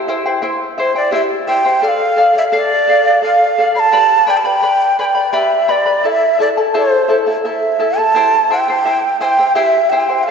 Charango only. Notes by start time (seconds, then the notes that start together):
0.08 E4 C5 E5 G5
0.26 E4 C5 G5
0.42 E4 C5 E5 G5
0.78 E4 C5 E5 G5
0.96 E4 C5 G5
1.11 E4 G4 C5 E5 G5
1.47 E4 C5 E5 G5
1.65 E4 C5 G5
1.82 A4 D5 F5
2.16 A4 D5 F5
2.34 D5 F5
2.52 A4 D5 F5
2.88 A4 D5 F5
3.04 D5 F5
3.22 A4 D5 F5
3.58 A4 D5 F5
3.75 D5 F5
3.92 G4 B4 D5 G5 B5
4.27 B4 D5 G5 B5
4.45 B4 D5 B5
4.62 B4 D5 G5 B5
4.99 B4 D5 G5 B5
5.15 B4 D5 B5
5.33 G4 B4 D5 G5 B5
5.68 B4 D5 G5 B5
5.86 B4 D5 B5
6.04 E4 A4 E5 A5
6.39 E4 A4 E5 A5
6.57 E4 A4 A5
6.74 E4 A4 C5 E5 A5
7.08 E4 A4 E5 A5
7.26 E4 A4 A5
7.45 E4 A4 E5 A5
7.80 E4 A4 E5 A5
7.98 E4 A4 A5
8.15 E4 G4 C5 E5 G5
8.50 E4 C5 E5 G5
8.68 E4 C5 G5
8.85 E4 C5 E5 G5
9.20 E4 C5 E5 G5
9.39 E4 C5 G5
9.55 E4 G4 C5 E5 G5
9.92 E4 C5 E5 G5
10.08 E4 C5 G5
10.27 A4